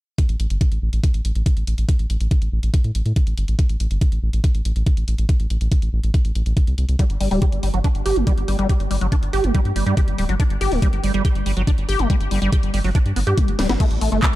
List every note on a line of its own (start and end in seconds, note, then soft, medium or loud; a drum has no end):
0.18 kick loud
0.18 closed hi-hat medium
0.29 0.36 A1 medium
0.29 closed hi-hat soft
0.40 0.47 A1 loud
0.40 closed hi-hat medium
0.50 0.57 G1 medium
0.50 closed hi-hat soft
0.61 kick loud
0.61 closed hi-hat medium
0.72 0.79 A1 medium
0.72 closed hi-hat soft
0.82 0.89 A1 loud
0.93 1.00 A1 loud
0.93 closed hi-hat soft
1.04 kick loud
1.04 closed hi-hat medium
1.14 1.21 A1 medium
1.14 closed hi-hat soft
1.25 1.32 A1 medium
1.25 closed hi-hat medium
1.35 1.42 A1 medium
1.35 closed hi-hat soft
1.46 kick loud
1.46 closed hi-hat medium
1.57 1.64 A1 medium
1.57 closed hi-hat soft
1.67 1.74 A1 medium
1.67 closed hi-hat medium
1.78 1.85 A1 medium
1.78 closed hi-hat soft
1.89 kick loud
1.89 closed hi-hat medium
1.99 2.06 A1 medium
1.99 closed hi-hat soft
2.10 2.17 A1 loud
2.10 closed hi-hat medium
2.20 2.27 A1 medium
2.20 closed hi-hat soft
2.31 kick loud
2.31 closed hi-hat medium
2.42 2.49 A1 medium
2.42 closed hi-hat soft
2.52 2.59 A1 loud
2.63 2.70 A1 medium
2.63 closed hi-hat soft
2.74 kick loud
2.74 closed hi-hat medium
2.84 2.91 A2 medium
2.84 closed hi-hat soft
2.95 3.02 A1 medium
2.95 closed hi-hat medium
3.06 3.13 A2 medium
3.06 closed hi-hat soft
3.16 kick loud
3.16 closed hi-hat medium
3.27 3.34 A1 medium
3.27 closed hi-hat soft
3.38 3.44 G1 loud
3.38 closed hi-hat medium
3.48 3.55 A1 medium
3.48 closed hi-hat soft
3.59 kick loud
3.59 closed hi-hat medium
3.69 3.76 A1 medium
3.69 closed hi-hat soft
3.80 3.87 A1 loud
3.80 closed hi-hat medium
3.91 3.98 G1 medium
3.91 closed hi-hat soft
4.01 kick loud
4.01 closed hi-hat medium
4.12 4.19 A1 medium
4.12 closed hi-hat soft
4.23 4.30 A1 loud
4.33 4.40 A1 medium
4.33 closed hi-hat soft
4.44 kick loud
4.44 closed hi-hat medium
4.55 4.61 A1 medium
4.55 closed hi-hat soft
4.65 4.72 A1 loud
4.65 closed hi-hat medium
4.76 4.83 A1 loud
4.76 closed hi-hat soft
4.86 kick loud
4.86 closed hi-hat medium
4.97 5.04 A1 medium
4.97 closed hi-hat soft
5.08 5.15 A1 loud
5.08 closed hi-hat medium
5.18 5.25 A1 medium
5.18 closed hi-hat soft
5.29 kick loud
5.29 closed hi-hat medium
5.40 5.47 A1 medium
5.40 closed hi-hat soft
5.50 5.57 A1 loud
5.50 closed hi-hat medium
5.61 5.68 A1 medium
5.61 closed hi-hat soft
5.72 kick loud
5.72 closed hi-hat medium
5.82 5.89 A1 medium
5.82 closed hi-hat soft
5.93 6.00 A1 loud
6.04 6.10 A1 medium
6.04 closed hi-hat soft
6.14 kick loud
6.14 closed hi-hat medium
6.25 6.32 A1 medium
6.25 closed hi-hat soft
6.35 6.42 A1 loud
6.35 closed hi-hat medium
6.46 6.53 A1 medium
6.46 closed hi-hat soft
6.57 kick loud
6.57 closed hi-hat medium
6.67 6.74 C2 medium
6.67 closed hi-hat soft
6.78 6.85 C2 medium
6.78 closed hi-hat medium
6.89 6.96 C2 medium
6.89 closed hi-hat soft
6.99 7.05 G3 medium
6.99 kick loud
6.99 closed hi-hat medium
7.10 7.17 G1 medium
7.10 closed hi-hat soft
7.21 7.27 G1 loud
7.21 7.29 G3 medium
7.21 open hi-hat loud
7.31 7.38 D1 loud
7.31 7.40 G3 loud
7.31 open hi-hat medium
7.42 7.45 G4 medium
7.42 kick loud
7.42 closed hi-hat medium
7.52 7.59 G1 medium
7.52 closed hi-hat soft
7.63 7.70 G1 loud
7.63 7.69 G3 medium
7.63 open hi-hat loud
7.74 7.81 G1 medium
7.74 7.79 F#3 medium
7.74 closed hi-hat soft
7.84 7.88 D4 loud
7.84 kick loud
7.84 closed hi-hat medium
7.95 8.02 G1 medium
7.95 closed hi-hat soft
8.06 8.13 G1 medium
8.06 8.18 G4 loud
8.06 open hi-hat loud
8.16 8.23 G1 medium
8.16 8.25 A3 loud
8.16 closed hi-hat soft
8.27 8.33 G3 loud
8.27 kick loud
8.27 closed hi-hat medium
8.38 8.44 G1 medium
8.38 closed hi-hat soft
8.48 8.55 G1 loud
8.48 8.57 G3 medium
8.48 open hi-hat loud
8.59 8.66 G1 medium
8.59 8.67 G3 loud
8.59 closed hi-hat soft
8.69 8.73 G4 medium
8.69 kick loud
8.69 closed hi-hat medium
8.80 8.87 G1 medium
8.80 closed hi-hat soft
8.91 8.98 G1 loud
8.91 8.96 G3 medium
8.91 open hi-hat loud
9.01 9.08 G1 medium
9.01 9.07 F#3 medium
9.01 closed hi-hat soft
9.12 9.15 D4 loud
9.12 kick loud
9.12 closed hi-hat medium
9.23 9.30 G1 medium
9.23 closed hi-hat soft
9.33 9.40 G1 loud
9.33 9.45 G4 loud
9.33 open hi-hat loud
9.44 9.51 G1 medium
9.44 9.52 A3 loud
9.44 closed hi-hat soft
9.55 9.60 G3 loud
9.55 kick loud
9.55 closed hi-hat medium
9.65 9.72 G2 medium
9.65 closed hi-hat soft
9.76 9.83 G1 loud
9.76 9.84 G3 medium
9.76 open hi-hat loud
9.86 9.93 G2 medium
9.86 9.95 G3 medium
9.86 closed hi-hat soft
9.97 10.01 G4 medium
9.97 kick loud
9.97 closed hi-hat medium
10.08 10.15 G1 medium
10.08 closed hi-hat soft
10.18 10.25 D1 loud
10.18 10.24 G3 medium
10.18 open hi-hat loud
10.29 10.36 G1 medium
10.29 10.35 F#3 medium
10.29 closed hi-hat soft
10.40 10.43 D4 loud
10.40 kick loud
10.40 closed hi-hat medium
10.50 10.57 G1 medium
10.50 closed hi-hat soft
10.61 10.68 G1 loud
10.61 10.73 G4 loud
10.61 open hi-hat loud
10.72 10.79 D1 loud
10.72 10.80 A3 medium
10.72 open hi-hat medium
10.82 10.88 G3 loud
10.82 kick loud
10.82 closed hi-hat loud
10.93 11.00 G1 medium
10.93 closed hi-hat soft
11.03 11.10 G1 loud
11.03 11.12 G3 medium
11.03 open hi-hat medium
11.14 11.21 G1 loud
11.14 11.23 G3 loud
11.14 closed hi-hat soft
11.25 11.28 G4 medium
11.25 kick loud
11.25 closed hi-hat medium
11.35 11.42 G1 medium
11.35 closed hi-hat soft
11.46 11.53 G1 loud
11.46 11.52 G3 medium
11.46 open hi-hat loud
11.57 11.64 G1 medium
11.57 11.62 F#3 medium
11.57 closed hi-hat soft
11.67 11.71 D4 loud
11.67 kick loud
11.67 closed hi-hat medium
11.78 11.85 G1 medium
11.78 closed hi-hat soft
11.89 11.96 G1 loud
11.89 12.01 G4 loud
11.89 open hi-hat medium
11.99 12.06 G1 medium
11.99 12.08 A3 loud
11.99 closed hi-hat soft
12.10 12.16 G3 loud
12.10 kick loud
12.10 closed hi-hat medium
12.21 12.27 G1 medium
12.21 closed hi-hat soft
12.31 12.38 G1 loud
12.31 12.40 G3 medium
12.31 open hi-hat loud
12.42 12.49 G1 medium
12.42 12.50 G3 loud
12.42 closed hi-hat soft
12.52 12.56 G4 medium
12.52 kick loud
12.52 closed hi-hat loud
12.63 12.70 G1 medium
12.63 closed hi-hat soft
12.74 12.81 G1 loud
12.74 12.79 G3 medium
12.74 open hi-hat loud
12.84 12.91 G1 loud
12.84 12.90 F#3 medium
12.84 open hi-hat medium
12.95 12.98 D4 loud
12.95 kick loud
12.95 closed hi-hat medium
13.06 13.13 G2 medium
13.06 closed hi-hat soft
13.16 13.23 G1 medium
13.16 13.20 B3 medium
13.16 open hi-hat loud
13.27 13.34 G2 medium
13.27 13.39 G4 loud
13.27 closed hi-hat soft
13.38 13.50 G3 loud
13.38 kick loud
13.38 closed hi-hat loud
13.48 13.55 G1 medium
13.48 13.52 A3 medium
13.48 closed hi-hat soft
13.59 13.66 D1 loud
13.59 13.67 G3 medium
13.59 snare medium
13.59 open hi-hat loud
13.69 13.76 G1 medium
13.69 13.73 B3 loud
13.69 snare medium
13.69 closed hi-hat soft
13.80 13.86 A3 loud
13.80 kick loud
13.80 closed hi-hat loud
13.80 crash medium
13.91 13.98 A1 medium
13.91 closed hi-hat soft
14.01 14.08 A1 loud
14.01 14.10 A3 medium
14.01 open hi-hat loud
14.12 14.19 G1 medium
14.12 14.21 A3 loud
14.12 closed hi-hat soft
14.23 14.26 A3 medium
14.23 kick loud
14.23 clap loud
14.23 closed hi-hat loud